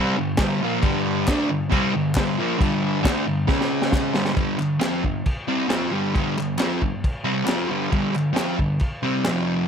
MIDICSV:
0, 0, Header, 1, 3, 480
1, 0, Start_track
1, 0, Tempo, 443787
1, 898, Time_signature, 4, 2, 24, 8
1, 10469, End_track
2, 0, Start_track
2, 0, Title_t, "Distorted electric guitar"
2, 0, Program_c, 0, 30
2, 0, Note_on_c, 0, 48, 88
2, 0, Note_on_c, 0, 55, 106
2, 0, Note_on_c, 0, 60, 99
2, 167, Note_off_c, 0, 55, 0
2, 169, Note_off_c, 0, 48, 0
2, 179, Note_off_c, 0, 60, 0
2, 185, Note_on_c, 0, 43, 69
2, 196, Note_on_c, 0, 50, 79
2, 373, Note_off_c, 0, 43, 0
2, 379, Note_off_c, 0, 50, 0
2, 418, Note_on_c, 0, 43, 97
2, 420, Note_on_c, 0, 50, 100
2, 433, Note_on_c, 0, 55, 116
2, 650, Note_off_c, 0, 43, 0
2, 652, Note_off_c, 0, 50, 0
2, 658, Note_off_c, 0, 55, 0
2, 671, Note_on_c, 0, 46, 82
2, 676, Note_on_c, 0, 53, 91
2, 691, Note_on_c, 0, 58, 94
2, 892, Note_off_c, 0, 46, 0
2, 892, Note_on_c, 0, 43, 101
2, 897, Note_on_c, 0, 50, 107
2, 899, Note_off_c, 0, 53, 0
2, 904, Note_on_c, 0, 55, 109
2, 907, Note_off_c, 0, 58, 0
2, 1368, Note_off_c, 0, 43, 0
2, 1370, Note_off_c, 0, 50, 0
2, 1374, Note_off_c, 0, 55, 0
2, 1386, Note_on_c, 0, 50, 99
2, 1391, Note_on_c, 0, 57, 93
2, 1398, Note_on_c, 0, 62, 107
2, 1603, Note_off_c, 0, 50, 0
2, 1613, Note_on_c, 0, 43, 69
2, 1616, Note_on_c, 0, 50, 79
2, 1617, Note_off_c, 0, 57, 0
2, 1621, Note_off_c, 0, 62, 0
2, 1808, Note_off_c, 0, 43, 0
2, 1809, Note_off_c, 0, 50, 0
2, 1843, Note_on_c, 0, 48, 97
2, 1858, Note_on_c, 0, 55, 100
2, 1866, Note_on_c, 0, 60, 94
2, 2083, Note_off_c, 0, 48, 0
2, 2091, Note_off_c, 0, 55, 0
2, 2095, Note_off_c, 0, 60, 0
2, 2113, Note_on_c, 0, 50, 74
2, 2115, Note_on_c, 0, 43, 67
2, 2297, Note_off_c, 0, 50, 0
2, 2299, Note_off_c, 0, 43, 0
2, 2342, Note_on_c, 0, 43, 94
2, 2349, Note_on_c, 0, 50, 91
2, 2359, Note_on_c, 0, 55, 100
2, 2573, Note_off_c, 0, 43, 0
2, 2576, Note_off_c, 0, 50, 0
2, 2579, Note_off_c, 0, 55, 0
2, 2583, Note_on_c, 0, 46, 81
2, 2583, Note_on_c, 0, 53, 97
2, 2599, Note_on_c, 0, 58, 86
2, 2785, Note_off_c, 0, 46, 0
2, 2790, Note_on_c, 0, 50, 103
2, 2793, Note_off_c, 0, 53, 0
2, 2794, Note_on_c, 0, 43, 101
2, 2797, Note_on_c, 0, 55, 114
2, 2821, Note_off_c, 0, 58, 0
2, 3255, Note_off_c, 0, 50, 0
2, 3268, Note_on_c, 0, 50, 91
2, 3273, Note_off_c, 0, 55, 0
2, 3277, Note_on_c, 0, 57, 96
2, 3278, Note_off_c, 0, 43, 0
2, 3282, Note_on_c, 0, 62, 100
2, 3515, Note_off_c, 0, 50, 0
2, 3520, Note_off_c, 0, 57, 0
2, 3523, Note_off_c, 0, 62, 0
2, 3524, Note_on_c, 0, 43, 67
2, 3540, Note_on_c, 0, 50, 65
2, 3723, Note_off_c, 0, 43, 0
2, 3731, Note_off_c, 0, 50, 0
2, 3755, Note_on_c, 0, 49, 98
2, 3761, Note_on_c, 0, 56, 102
2, 3766, Note_on_c, 0, 61, 98
2, 4469, Note_off_c, 0, 49, 0
2, 4471, Note_on_c, 0, 43, 85
2, 4472, Note_off_c, 0, 56, 0
2, 4474, Note_on_c, 0, 50, 88
2, 4476, Note_on_c, 0, 55, 93
2, 4485, Note_off_c, 0, 61, 0
2, 4673, Note_off_c, 0, 43, 0
2, 4678, Note_off_c, 0, 50, 0
2, 4683, Note_off_c, 0, 55, 0
2, 4686, Note_on_c, 0, 43, 93
2, 4691, Note_on_c, 0, 50, 93
2, 4696, Note_on_c, 0, 55, 100
2, 4933, Note_off_c, 0, 43, 0
2, 4943, Note_off_c, 0, 50, 0
2, 4946, Note_on_c, 0, 43, 59
2, 4950, Note_off_c, 0, 55, 0
2, 4956, Note_on_c, 0, 50, 65
2, 5154, Note_off_c, 0, 43, 0
2, 5159, Note_off_c, 0, 50, 0
2, 5184, Note_on_c, 0, 53, 84
2, 5184, Note_on_c, 0, 60, 88
2, 5195, Note_on_c, 0, 65, 97
2, 5434, Note_off_c, 0, 53, 0
2, 5434, Note_off_c, 0, 60, 0
2, 5440, Note_off_c, 0, 65, 0
2, 5442, Note_on_c, 0, 43, 58
2, 5455, Note_on_c, 0, 50, 70
2, 5642, Note_off_c, 0, 43, 0
2, 5649, Note_off_c, 0, 50, 0
2, 5924, Note_on_c, 0, 55, 99
2, 5927, Note_on_c, 0, 48, 92
2, 5927, Note_on_c, 0, 60, 101
2, 6126, Note_off_c, 0, 60, 0
2, 6135, Note_off_c, 0, 55, 0
2, 6139, Note_on_c, 0, 60, 105
2, 6141, Note_off_c, 0, 48, 0
2, 6146, Note_on_c, 0, 53, 92
2, 6153, Note_on_c, 0, 65, 112
2, 6383, Note_off_c, 0, 53, 0
2, 6386, Note_on_c, 0, 43, 74
2, 6387, Note_on_c, 0, 50, 85
2, 6392, Note_off_c, 0, 60, 0
2, 6399, Note_off_c, 0, 65, 0
2, 6404, Note_on_c, 0, 55, 98
2, 6630, Note_off_c, 0, 43, 0
2, 6637, Note_off_c, 0, 50, 0
2, 6638, Note_off_c, 0, 55, 0
2, 6643, Note_on_c, 0, 43, 93
2, 6651, Note_on_c, 0, 55, 96
2, 6652, Note_on_c, 0, 50, 92
2, 6884, Note_off_c, 0, 43, 0
2, 6889, Note_off_c, 0, 50, 0
2, 6889, Note_off_c, 0, 55, 0
2, 6899, Note_on_c, 0, 43, 59
2, 6908, Note_on_c, 0, 50, 66
2, 7092, Note_off_c, 0, 43, 0
2, 7096, Note_off_c, 0, 50, 0
2, 7118, Note_on_c, 0, 53, 85
2, 7124, Note_on_c, 0, 60, 97
2, 7135, Note_on_c, 0, 65, 103
2, 7362, Note_off_c, 0, 53, 0
2, 7365, Note_off_c, 0, 60, 0
2, 7371, Note_off_c, 0, 65, 0
2, 7371, Note_on_c, 0, 43, 67
2, 7377, Note_on_c, 0, 50, 66
2, 7568, Note_off_c, 0, 43, 0
2, 7571, Note_off_c, 0, 50, 0
2, 7834, Note_on_c, 0, 48, 100
2, 7836, Note_on_c, 0, 55, 111
2, 7836, Note_on_c, 0, 60, 108
2, 8054, Note_off_c, 0, 48, 0
2, 8057, Note_off_c, 0, 60, 0
2, 8059, Note_on_c, 0, 53, 95
2, 8066, Note_off_c, 0, 55, 0
2, 8070, Note_on_c, 0, 60, 102
2, 8074, Note_on_c, 0, 65, 106
2, 8304, Note_off_c, 0, 53, 0
2, 8308, Note_on_c, 0, 43, 84
2, 8308, Note_on_c, 0, 50, 81
2, 8310, Note_off_c, 0, 60, 0
2, 8315, Note_on_c, 0, 55, 88
2, 8320, Note_off_c, 0, 65, 0
2, 8536, Note_off_c, 0, 43, 0
2, 8540, Note_off_c, 0, 50, 0
2, 8549, Note_on_c, 0, 43, 95
2, 8552, Note_off_c, 0, 55, 0
2, 8553, Note_on_c, 0, 50, 108
2, 8565, Note_on_c, 0, 55, 114
2, 8763, Note_off_c, 0, 43, 0
2, 8773, Note_off_c, 0, 50, 0
2, 8776, Note_on_c, 0, 43, 56
2, 8786, Note_on_c, 0, 50, 61
2, 8806, Note_off_c, 0, 55, 0
2, 8990, Note_off_c, 0, 43, 0
2, 8995, Note_off_c, 0, 50, 0
2, 9010, Note_on_c, 0, 53, 97
2, 9022, Note_on_c, 0, 60, 97
2, 9029, Note_on_c, 0, 65, 103
2, 9268, Note_off_c, 0, 53, 0
2, 9274, Note_off_c, 0, 60, 0
2, 9278, Note_off_c, 0, 65, 0
2, 9287, Note_on_c, 0, 43, 63
2, 9295, Note_on_c, 0, 50, 64
2, 9486, Note_off_c, 0, 43, 0
2, 9490, Note_off_c, 0, 50, 0
2, 9763, Note_on_c, 0, 48, 90
2, 9777, Note_on_c, 0, 55, 94
2, 9779, Note_on_c, 0, 60, 104
2, 9992, Note_on_c, 0, 41, 86
2, 9998, Note_off_c, 0, 48, 0
2, 10011, Note_on_c, 0, 48, 86
2, 10012, Note_off_c, 0, 60, 0
2, 10016, Note_off_c, 0, 55, 0
2, 10016, Note_on_c, 0, 53, 97
2, 10469, Note_off_c, 0, 41, 0
2, 10469, Note_off_c, 0, 48, 0
2, 10469, Note_off_c, 0, 53, 0
2, 10469, End_track
3, 0, Start_track
3, 0, Title_t, "Drums"
3, 405, Note_on_c, 9, 38, 117
3, 406, Note_on_c, 9, 49, 65
3, 415, Note_on_c, 9, 39, 97
3, 416, Note_on_c, 9, 36, 113
3, 513, Note_off_c, 9, 38, 0
3, 514, Note_off_c, 9, 49, 0
3, 523, Note_off_c, 9, 39, 0
3, 524, Note_off_c, 9, 36, 0
3, 891, Note_on_c, 9, 49, 61
3, 898, Note_on_c, 9, 36, 117
3, 1000, Note_off_c, 9, 49, 0
3, 1006, Note_off_c, 9, 36, 0
3, 1382, Note_on_c, 9, 36, 109
3, 1382, Note_on_c, 9, 39, 98
3, 1385, Note_on_c, 9, 38, 115
3, 1386, Note_on_c, 9, 49, 60
3, 1490, Note_off_c, 9, 39, 0
3, 1491, Note_off_c, 9, 36, 0
3, 1493, Note_off_c, 9, 38, 0
3, 1494, Note_off_c, 9, 49, 0
3, 1858, Note_on_c, 9, 49, 67
3, 1860, Note_on_c, 9, 36, 110
3, 1967, Note_off_c, 9, 49, 0
3, 1968, Note_off_c, 9, 36, 0
3, 2324, Note_on_c, 9, 39, 91
3, 2339, Note_on_c, 9, 36, 111
3, 2344, Note_on_c, 9, 38, 119
3, 2345, Note_on_c, 9, 49, 67
3, 2432, Note_off_c, 9, 39, 0
3, 2447, Note_off_c, 9, 36, 0
3, 2452, Note_off_c, 9, 38, 0
3, 2453, Note_off_c, 9, 49, 0
3, 2819, Note_on_c, 9, 36, 117
3, 2825, Note_on_c, 9, 49, 67
3, 2927, Note_off_c, 9, 36, 0
3, 2933, Note_off_c, 9, 49, 0
3, 3295, Note_on_c, 9, 36, 115
3, 3303, Note_on_c, 9, 38, 117
3, 3304, Note_on_c, 9, 49, 65
3, 3312, Note_on_c, 9, 39, 98
3, 3403, Note_off_c, 9, 36, 0
3, 3411, Note_off_c, 9, 38, 0
3, 3412, Note_off_c, 9, 49, 0
3, 3420, Note_off_c, 9, 39, 0
3, 3768, Note_on_c, 9, 38, 69
3, 3770, Note_on_c, 9, 36, 126
3, 3876, Note_off_c, 9, 38, 0
3, 3878, Note_off_c, 9, 36, 0
3, 3902, Note_on_c, 9, 38, 63
3, 4010, Note_off_c, 9, 38, 0
3, 4130, Note_on_c, 9, 38, 78
3, 4238, Note_off_c, 9, 38, 0
3, 4241, Note_on_c, 9, 38, 96
3, 4248, Note_on_c, 9, 36, 114
3, 4271, Note_on_c, 9, 39, 84
3, 4350, Note_off_c, 9, 38, 0
3, 4356, Note_off_c, 9, 36, 0
3, 4379, Note_off_c, 9, 39, 0
3, 4480, Note_on_c, 9, 38, 99
3, 4589, Note_off_c, 9, 38, 0
3, 4597, Note_on_c, 9, 38, 77
3, 4705, Note_off_c, 9, 38, 0
3, 4722, Note_on_c, 9, 49, 56
3, 4725, Note_on_c, 9, 36, 116
3, 4831, Note_off_c, 9, 49, 0
3, 4833, Note_off_c, 9, 36, 0
3, 4974, Note_on_c, 9, 39, 64
3, 5082, Note_off_c, 9, 39, 0
3, 5207, Note_on_c, 9, 38, 107
3, 5208, Note_on_c, 9, 49, 56
3, 5216, Note_on_c, 9, 39, 97
3, 5315, Note_off_c, 9, 38, 0
3, 5316, Note_off_c, 9, 49, 0
3, 5324, Note_off_c, 9, 39, 0
3, 5454, Note_on_c, 9, 36, 79
3, 5562, Note_off_c, 9, 36, 0
3, 5686, Note_on_c, 9, 49, 58
3, 5692, Note_on_c, 9, 36, 101
3, 5794, Note_off_c, 9, 49, 0
3, 5800, Note_off_c, 9, 36, 0
3, 6167, Note_on_c, 9, 38, 114
3, 6168, Note_on_c, 9, 49, 55
3, 6183, Note_on_c, 9, 39, 79
3, 6275, Note_off_c, 9, 38, 0
3, 6276, Note_off_c, 9, 49, 0
3, 6291, Note_off_c, 9, 39, 0
3, 6656, Note_on_c, 9, 36, 114
3, 6657, Note_on_c, 9, 49, 62
3, 6764, Note_off_c, 9, 36, 0
3, 6765, Note_off_c, 9, 49, 0
3, 6907, Note_on_c, 9, 39, 65
3, 7015, Note_off_c, 9, 39, 0
3, 7125, Note_on_c, 9, 39, 89
3, 7138, Note_on_c, 9, 38, 122
3, 7140, Note_on_c, 9, 49, 63
3, 7233, Note_off_c, 9, 39, 0
3, 7247, Note_off_c, 9, 38, 0
3, 7248, Note_off_c, 9, 49, 0
3, 7376, Note_on_c, 9, 36, 84
3, 7484, Note_off_c, 9, 36, 0
3, 7616, Note_on_c, 9, 36, 109
3, 7617, Note_on_c, 9, 49, 59
3, 7724, Note_off_c, 9, 36, 0
3, 7725, Note_off_c, 9, 49, 0
3, 8086, Note_on_c, 9, 39, 88
3, 8096, Note_on_c, 9, 38, 105
3, 8097, Note_on_c, 9, 49, 61
3, 8194, Note_off_c, 9, 39, 0
3, 8204, Note_off_c, 9, 38, 0
3, 8205, Note_off_c, 9, 49, 0
3, 8570, Note_on_c, 9, 49, 57
3, 8572, Note_on_c, 9, 36, 112
3, 8679, Note_off_c, 9, 49, 0
3, 8680, Note_off_c, 9, 36, 0
3, 8820, Note_on_c, 9, 39, 72
3, 8928, Note_off_c, 9, 39, 0
3, 9046, Note_on_c, 9, 38, 114
3, 9047, Note_on_c, 9, 49, 56
3, 9065, Note_on_c, 9, 39, 100
3, 9154, Note_off_c, 9, 38, 0
3, 9155, Note_off_c, 9, 49, 0
3, 9173, Note_off_c, 9, 39, 0
3, 9291, Note_on_c, 9, 36, 85
3, 9399, Note_off_c, 9, 36, 0
3, 9513, Note_on_c, 9, 49, 56
3, 9530, Note_on_c, 9, 36, 106
3, 9621, Note_off_c, 9, 49, 0
3, 9638, Note_off_c, 9, 36, 0
3, 10000, Note_on_c, 9, 38, 109
3, 10001, Note_on_c, 9, 49, 56
3, 10012, Note_on_c, 9, 39, 95
3, 10108, Note_off_c, 9, 38, 0
3, 10109, Note_off_c, 9, 49, 0
3, 10120, Note_off_c, 9, 39, 0
3, 10469, End_track
0, 0, End_of_file